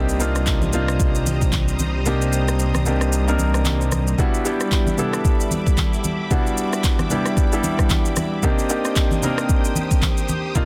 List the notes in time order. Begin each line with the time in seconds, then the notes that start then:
Already playing: C2 G3 A#3 C4 D4 D#4 G4 C5 A#5 D#6
0.09 shaker
0.19 A#3 C4 D4 D#4 F4, shaker
0.35 cross-stick, shaker
0.46 kick, clap, shaker
0.62 high conga, shaker
0.73 A#3 C4 D4 D#4 F4, low conga, shaker
0.88 cross-stick, shaker
1.00 kick, shaker
1.15 shaker
1.26 high conga, shaker
1.41 kick, shaker
1.52 kick, clap, high conga, shaker
1.68 shaker
1.79 high conga, shaker
2.06 A#3 C4 D4 D#4 G4, low conga, shaker
2.22 shaker
2.33 shaker
2.48 cross-stick, shaker
2.59 shaker
2.74 cross-stick, high conga, shaker
2.85 A#3 C4 D4 D#4 G4, low conga, shaker
3.01 cross-stick, shaker
3.13 shaker
3.27 A#3 C4 D4 D#4 A#4, shaker
3.38 high conga, shaker
3.54 cross-stick, shaker
3.65 clap, high conga, shaker
3.81 shaker
3.92 cross-stick, high conga, shaker
4.07 shaker
4.18 G3 B3 D4 E4 F#4 E5 B5 D6, kick, low conga, shaker
4.34 shaker
4.44 G3 B3 D4 E4 G4, shaker
4.60 cross-stick, shaker
4.71 kick, clap, shaker
4.86 high conga, shaker
4.98 G3 B3 D4 E4 A4, low conga, shaker
5.13 cross-stick, shaker
5.25 kick, shaker
5.40 shaker
5.51 high conga, shaker
5.66 kick, shaker
5.77 kick, clap, high conga, shaker
5.93 shaker
6.04 high conga, shaker
6.30 G3 B3 D4 E4 F#4, kick, low conga, shaker
6.47 shaker
6.58 shaker
6.73 cross-stick, shaker
6.84 kick, clap, shaker
6.99 cross-stick, high conga, shaker
7.10 G3 B3 D4 E4 G4, low conga, shaker
7.26 cross-stick, shaker
7.37 kick, shaker
7.52 G3 B3 D4 E4 G4, shaker
7.63 high conga, shaker
7.79 kick, cross-stick, shaker
7.90 kick, clap, high conga, shaker
8.05 shaker
8.16 cross-stick, high conga, shaker
8.42 A#3 C4 D4 D#4 G4 C5 G5 D#6, kick, low conga, shaker
8.59 shaker
8.69 A#3 C4 D4 D#4 G4, shaker
8.85 cross-stick, shaker
8.96 kick, clap, shaker
9.11 high conga, shaker
9.22 A#3 C4 D4 D#4 A#4, low conga, shaker
9.38 cross-stick, shaker
9.49 kick, shaker
9.65 shaker
9.75 high conga, shaker
9.91 kick, shaker
10.02 kick, clap, high conga, shaker
10.17 shaker
10.28 high conga, shaker
10.55 A#3 C4 D4 D#4 F4, kick, low conga, shaker